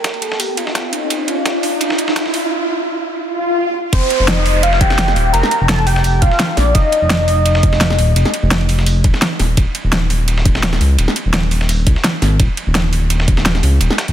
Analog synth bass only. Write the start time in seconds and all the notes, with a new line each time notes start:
3.93 F1
4.20 F1
4.81 F1
5.16 D#1
5.34 F1
5.61 F1
6.22 D#1
6.57 A#1
6.75 F1
7.02 F1
7.63 F1
7.98 D#1
8.16 F1
8.43 F1
9.04 D#1
9.40 D#1
9.57 D#1
9.84 D#1
10.45 D#1
10.81 C#2
10.98 D#1
11.26 D#1
11.87 C#2
12.22 G#1
12.40 D#1
12.67 D#1
13.28 D#1
13.63 C#2
13.81 D#1
14.08 D#1